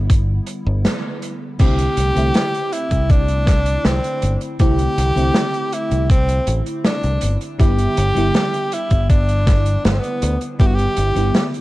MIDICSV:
0, 0, Header, 1, 5, 480
1, 0, Start_track
1, 0, Tempo, 750000
1, 1022, Time_signature, 4, 2, 24, 8
1, 7430, End_track
2, 0, Start_track
2, 0, Title_t, "Tenor saxophone"
2, 0, Program_c, 0, 66
2, 1028, Note_on_c, 0, 67, 127
2, 1745, Note_on_c, 0, 64, 102
2, 1755, Note_off_c, 0, 67, 0
2, 1989, Note_on_c, 0, 62, 114
2, 1998, Note_off_c, 0, 64, 0
2, 2472, Note_on_c, 0, 60, 97
2, 2482, Note_off_c, 0, 62, 0
2, 2828, Note_off_c, 0, 60, 0
2, 2949, Note_on_c, 0, 67, 127
2, 3670, Note_on_c, 0, 64, 101
2, 3680, Note_off_c, 0, 67, 0
2, 3906, Note_off_c, 0, 64, 0
2, 3909, Note_on_c, 0, 60, 107
2, 4192, Note_off_c, 0, 60, 0
2, 4388, Note_on_c, 0, 62, 98
2, 4720, Note_off_c, 0, 62, 0
2, 4863, Note_on_c, 0, 67, 123
2, 5588, Note_on_c, 0, 64, 99
2, 5597, Note_off_c, 0, 67, 0
2, 5821, Note_off_c, 0, 64, 0
2, 5825, Note_on_c, 0, 62, 107
2, 6278, Note_off_c, 0, 62, 0
2, 6309, Note_on_c, 0, 59, 88
2, 6350, Note_on_c, 0, 60, 76
2, 6360, Note_off_c, 0, 59, 0
2, 6394, Note_on_c, 0, 59, 99
2, 6404, Note_off_c, 0, 60, 0
2, 6664, Note_off_c, 0, 59, 0
2, 6785, Note_on_c, 0, 67, 107
2, 6823, Note_on_c, 0, 66, 93
2, 6833, Note_off_c, 0, 67, 0
2, 6875, Note_on_c, 0, 67, 118
2, 6885, Note_off_c, 0, 66, 0
2, 7331, Note_off_c, 0, 67, 0
2, 7430, End_track
3, 0, Start_track
3, 0, Title_t, "FM electric piano"
3, 0, Program_c, 1, 5
3, 0, Control_c, 1, 64, 127
3, 0, Note_on_c, 1, 50, 75
3, 0, Note_on_c, 1, 55, 67
3, 0, Note_on_c, 1, 59, 68
3, 0, Note_on_c, 1, 64, 82
3, 989, Note_off_c, 1, 50, 0
3, 992, Note_off_c, 1, 55, 0
3, 996, Note_off_c, 1, 59, 0
3, 998, Note_off_c, 1, 64, 0
3, 1019, Note_on_c, 1, 50, 79
3, 1021, Note_on_c, 1, 57, 75
3, 1026, Note_on_c, 1, 60, 75
3, 1027, Note_on_c, 1, 64, 88
3, 1029, Control_c, 1, 64, 0
3, 1145, Control_c, 1, 64, 127
3, 1352, Note_off_c, 1, 50, 0
3, 1353, Note_off_c, 1, 57, 0
3, 1355, Note_off_c, 1, 60, 0
3, 1356, Note_off_c, 1, 64, 0
3, 1375, Note_on_c, 1, 50, 75
3, 1379, Note_on_c, 1, 57, 68
3, 1384, Note_on_c, 1, 60, 68
3, 1391, Note_on_c, 1, 64, 86
3, 2909, Note_off_c, 1, 50, 0
3, 2912, Note_off_c, 1, 57, 0
3, 2914, Note_off_c, 1, 60, 0
3, 2918, Note_off_c, 1, 64, 0
3, 2942, Note_on_c, 1, 50, 79
3, 2944, Note_on_c, 1, 57, 74
3, 2948, Note_on_c, 1, 60, 73
3, 2952, Note_on_c, 1, 64, 91
3, 3274, Note_off_c, 1, 50, 0
3, 3275, Note_off_c, 1, 57, 0
3, 3276, Note_off_c, 1, 60, 0
3, 3279, Note_off_c, 1, 64, 0
3, 3294, Note_on_c, 1, 50, 76
3, 3300, Note_on_c, 1, 57, 71
3, 3308, Note_on_c, 1, 60, 71
3, 3315, Note_on_c, 1, 64, 81
3, 4829, Note_off_c, 1, 50, 0
3, 4832, Note_off_c, 1, 57, 0
3, 4836, Note_off_c, 1, 60, 0
3, 4840, Note_off_c, 1, 64, 0
3, 4855, Note_on_c, 1, 50, 80
3, 4858, Note_on_c, 1, 55, 76
3, 4863, Note_on_c, 1, 59, 75
3, 4865, Note_on_c, 1, 64, 94
3, 4871, Control_c, 1, 64, 0
3, 4999, Control_c, 1, 64, 127
3, 5190, Note_off_c, 1, 50, 0
3, 5192, Note_off_c, 1, 55, 0
3, 5194, Note_off_c, 1, 59, 0
3, 5195, Note_off_c, 1, 64, 0
3, 5214, Note_on_c, 1, 50, 77
3, 5218, Note_on_c, 1, 55, 68
3, 5226, Note_on_c, 1, 59, 69
3, 5233, Note_on_c, 1, 64, 85
3, 6749, Note_off_c, 1, 50, 0
3, 6751, Note_off_c, 1, 55, 0
3, 6755, Note_off_c, 1, 59, 0
3, 6759, Note_off_c, 1, 64, 0
3, 6775, Note_on_c, 1, 50, 78
3, 6781, Note_on_c, 1, 55, 73
3, 6781, Note_on_c, 1, 59, 70
3, 6786, Note_on_c, 1, 64, 85
3, 7110, Note_off_c, 1, 50, 0
3, 7113, Note_off_c, 1, 55, 0
3, 7113, Note_off_c, 1, 59, 0
3, 7115, Note_off_c, 1, 64, 0
3, 7135, Note_on_c, 1, 50, 72
3, 7140, Note_on_c, 1, 55, 67
3, 7145, Note_on_c, 1, 59, 70
3, 7152, Note_on_c, 1, 64, 80
3, 7430, Note_off_c, 1, 50, 0
3, 7430, Note_off_c, 1, 55, 0
3, 7430, Note_off_c, 1, 59, 0
3, 7430, Note_off_c, 1, 64, 0
3, 7430, End_track
4, 0, Start_track
4, 0, Title_t, "Fingered electric bass"
4, 0, Program_c, 2, 33
4, 0, Note_on_c, 2, 31, 94
4, 247, Note_off_c, 2, 31, 0
4, 425, Note_on_c, 2, 31, 104
4, 543, Note_off_c, 2, 31, 0
4, 1023, Note_on_c, 2, 36, 95
4, 1192, Note_off_c, 2, 36, 0
4, 1263, Note_on_c, 2, 36, 95
4, 1347, Note_off_c, 2, 36, 0
4, 1386, Note_on_c, 2, 36, 90
4, 1468, Note_off_c, 2, 36, 0
4, 1862, Note_on_c, 2, 36, 94
4, 2405, Note_off_c, 2, 36, 0
4, 2465, Note_on_c, 2, 36, 99
4, 2548, Note_off_c, 2, 36, 0
4, 2707, Note_on_c, 2, 31, 95
4, 2789, Note_off_c, 2, 31, 0
4, 2942, Note_on_c, 2, 36, 99
4, 3111, Note_off_c, 2, 36, 0
4, 3185, Note_on_c, 2, 36, 103
4, 3268, Note_off_c, 2, 36, 0
4, 3305, Note_on_c, 2, 36, 92
4, 3388, Note_off_c, 2, 36, 0
4, 3786, Note_on_c, 2, 36, 97
4, 4087, Note_off_c, 2, 36, 0
4, 4143, Note_on_c, 2, 33, 108
4, 4227, Note_off_c, 2, 33, 0
4, 4505, Note_on_c, 2, 36, 91
4, 4588, Note_off_c, 2, 36, 0
4, 4626, Note_on_c, 2, 31, 88
4, 4709, Note_off_c, 2, 31, 0
4, 4861, Note_on_c, 2, 31, 100
4, 5030, Note_off_c, 2, 31, 0
4, 5106, Note_on_c, 2, 31, 104
4, 5189, Note_off_c, 2, 31, 0
4, 5227, Note_on_c, 2, 31, 90
4, 5309, Note_off_c, 2, 31, 0
4, 5703, Note_on_c, 2, 31, 95
4, 6245, Note_off_c, 2, 31, 0
4, 6305, Note_on_c, 2, 31, 100
4, 6388, Note_off_c, 2, 31, 0
4, 6545, Note_on_c, 2, 38, 102
4, 6628, Note_off_c, 2, 38, 0
4, 6782, Note_on_c, 2, 31, 94
4, 6951, Note_off_c, 2, 31, 0
4, 7025, Note_on_c, 2, 31, 101
4, 7108, Note_off_c, 2, 31, 0
4, 7144, Note_on_c, 2, 31, 86
4, 7228, Note_off_c, 2, 31, 0
4, 7430, End_track
5, 0, Start_track
5, 0, Title_t, "Drums"
5, 62, Note_on_c, 9, 36, 113
5, 64, Note_on_c, 9, 42, 94
5, 126, Note_off_c, 9, 36, 0
5, 128, Note_off_c, 9, 42, 0
5, 297, Note_on_c, 9, 42, 75
5, 361, Note_off_c, 9, 42, 0
5, 542, Note_on_c, 9, 42, 92
5, 543, Note_on_c, 9, 38, 107
5, 606, Note_off_c, 9, 42, 0
5, 607, Note_off_c, 9, 38, 0
5, 782, Note_on_c, 9, 42, 72
5, 846, Note_off_c, 9, 42, 0
5, 1018, Note_on_c, 9, 42, 77
5, 1022, Note_on_c, 9, 36, 121
5, 1025, Note_on_c, 9, 49, 106
5, 1082, Note_off_c, 9, 42, 0
5, 1086, Note_off_c, 9, 36, 0
5, 1089, Note_off_c, 9, 49, 0
5, 1141, Note_on_c, 9, 42, 62
5, 1205, Note_off_c, 9, 42, 0
5, 1260, Note_on_c, 9, 42, 101
5, 1324, Note_off_c, 9, 42, 0
5, 1385, Note_on_c, 9, 42, 60
5, 1449, Note_off_c, 9, 42, 0
5, 1498, Note_on_c, 9, 42, 85
5, 1506, Note_on_c, 9, 38, 127
5, 1562, Note_off_c, 9, 42, 0
5, 1570, Note_off_c, 9, 38, 0
5, 1627, Note_on_c, 9, 42, 60
5, 1691, Note_off_c, 9, 42, 0
5, 1743, Note_on_c, 9, 42, 108
5, 1807, Note_off_c, 9, 42, 0
5, 1860, Note_on_c, 9, 42, 60
5, 1863, Note_on_c, 9, 36, 60
5, 1924, Note_off_c, 9, 42, 0
5, 1927, Note_off_c, 9, 36, 0
5, 1980, Note_on_c, 9, 42, 77
5, 1982, Note_on_c, 9, 36, 121
5, 2044, Note_off_c, 9, 42, 0
5, 2046, Note_off_c, 9, 36, 0
5, 2100, Note_on_c, 9, 42, 55
5, 2164, Note_off_c, 9, 42, 0
5, 2217, Note_on_c, 9, 38, 55
5, 2222, Note_on_c, 9, 36, 104
5, 2224, Note_on_c, 9, 42, 92
5, 2281, Note_off_c, 9, 38, 0
5, 2286, Note_off_c, 9, 36, 0
5, 2288, Note_off_c, 9, 42, 0
5, 2340, Note_on_c, 9, 42, 60
5, 2404, Note_off_c, 9, 42, 0
5, 2463, Note_on_c, 9, 38, 121
5, 2464, Note_on_c, 9, 42, 88
5, 2527, Note_off_c, 9, 38, 0
5, 2528, Note_off_c, 9, 42, 0
5, 2585, Note_on_c, 9, 42, 57
5, 2649, Note_off_c, 9, 42, 0
5, 2701, Note_on_c, 9, 42, 99
5, 2765, Note_off_c, 9, 42, 0
5, 2821, Note_on_c, 9, 42, 52
5, 2885, Note_off_c, 9, 42, 0
5, 2939, Note_on_c, 9, 42, 74
5, 2943, Note_on_c, 9, 36, 127
5, 3003, Note_off_c, 9, 42, 0
5, 3007, Note_off_c, 9, 36, 0
5, 3062, Note_on_c, 9, 42, 58
5, 3126, Note_off_c, 9, 42, 0
5, 3187, Note_on_c, 9, 42, 109
5, 3251, Note_off_c, 9, 42, 0
5, 3308, Note_on_c, 9, 42, 60
5, 3372, Note_off_c, 9, 42, 0
5, 3421, Note_on_c, 9, 38, 127
5, 3430, Note_on_c, 9, 42, 83
5, 3485, Note_off_c, 9, 38, 0
5, 3494, Note_off_c, 9, 42, 0
5, 3544, Note_on_c, 9, 42, 52
5, 3608, Note_off_c, 9, 42, 0
5, 3664, Note_on_c, 9, 42, 98
5, 3728, Note_off_c, 9, 42, 0
5, 3784, Note_on_c, 9, 42, 60
5, 3848, Note_off_c, 9, 42, 0
5, 3902, Note_on_c, 9, 36, 127
5, 3906, Note_on_c, 9, 42, 81
5, 3966, Note_off_c, 9, 36, 0
5, 3970, Note_off_c, 9, 42, 0
5, 4022, Note_on_c, 9, 42, 61
5, 4086, Note_off_c, 9, 42, 0
5, 4139, Note_on_c, 9, 42, 95
5, 4203, Note_off_c, 9, 42, 0
5, 4263, Note_on_c, 9, 42, 58
5, 4327, Note_off_c, 9, 42, 0
5, 4380, Note_on_c, 9, 42, 74
5, 4381, Note_on_c, 9, 38, 127
5, 4444, Note_off_c, 9, 42, 0
5, 4445, Note_off_c, 9, 38, 0
5, 4500, Note_on_c, 9, 42, 52
5, 4564, Note_off_c, 9, 42, 0
5, 4614, Note_on_c, 9, 42, 110
5, 4678, Note_off_c, 9, 42, 0
5, 4742, Note_on_c, 9, 42, 59
5, 4806, Note_off_c, 9, 42, 0
5, 4861, Note_on_c, 9, 36, 126
5, 4865, Note_on_c, 9, 42, 81
5, 4925, Note_off_c, 9, 36, 0
5, 4929, Note_off_c, 9, 42, 0
5, 4981, Note_on_c, 9, 42, 58
5, 5045, Note_off_c, 9, 42, 0
5, 5101, Note_on_c, 9, 42, 102
5, 5165, Note_off_c, 9, 42, 0
5, 5225, Note_on_c, 9, 42, 62
5, 5289, Note_off_c, 9, 42, 0
5, 5339, Note_on_c, 9, 42, 82
5, 5344, Note_on_c, 9, 38, 127
5, 5403, Note_off_c, 9, 42, 0
5, 5408, Note_off_c, 9, 38, 0
5, 5462, Note_on_c, 9, 42, 53
5, 5526, Note_off_c, 9, 42, 0
5, 5579, Note_on_c, 9, 42, 89
5, 5643, Note_off_c, 9, 42, 0
5, 5698, Note_on_c, 9, 42, 54
5, 5702, Note_on_c, 9, 36, 63
5, 5762, Note_off_c, 9, 42, 0
5, 5766, Note_off_c, 9, 36, 0
5, 5821, Note_on_c, 9, 36, 127
5, 5821, Note_on_c, 9, 42, 87
5, 5885, Note_off_c, 9, 36, 0
5, 5885, Note_off_c, 9, 42, 0
5, 5942, Note_on_c, 9, 42, 52
5, 6006, Note_off_c, 9, 42, 0
5, 6058, Note_on_c, 9, 38, 64
5, 6061, Note_on_c, 9, 42, 92
5, 6062, Note_on_c, 9, 36, 117
5, 6122, Note_off_c, 9, 38, 0
5, 6125, Note_off_c, 9, 42, 0
5, 6126, Note_off_c, 9, 36, 0
5, 6180, Note_on_c, 9, 42, 59
5, 6244, Note_off_c, 9, 42, 0
5, 6301, Note_on_c, 9, 42, 81
5, 6305, Note_on_c, 9, 38, 127
5, 6365, Note_off_c, 9, 42, 0
5, 6369, Note_off_c, 9, 38, 0
5, 6422, Note_on_c, 9, 42, 60
5, 6486, Note_off_c, 9, 42, 0
5, 6540, Note_on_c, 9, 42, 109
5, 6604, Note_off_c, 9, 42, 0
5, 6661, Note_on_c, 9, 42, 60
5, 6725, Note_off_c, 9, 42, 0
5, 6781, Note_on_c, 9, 36, 127
5, 6783, Note_on_c, 9, 42, 76
5, 6845, Note_off_c, 9, 36, 0
5, 6847, Note_off_c, 9, 42, 0
5, 6902, Note_on_c, 9, 42, 54
5, 6966, Note_off_c, 9, 42, 0
5, 7017, Note_on_c, 9, 42, 100
5, 7081, Note_off_c, 9, 42, 0
5, 7143, Note_on_c, 9, 42, 57
5, 7207, Note_off_c, 9, 42, 0
5, 7260, Note_on_c, 9, 42, 74
5, 7262, Note_on_c, 9, 38, 127
5, 7324, Note_off_c, 9, 42, 0
5, 7326, Note_off_c, 9, 38, 0
5, 7385, Note_on_c, 9, 42, 53
5, 7430, Note_off_c, 9, 42, 0
5, 7430, End_track
0, 0, End_of_file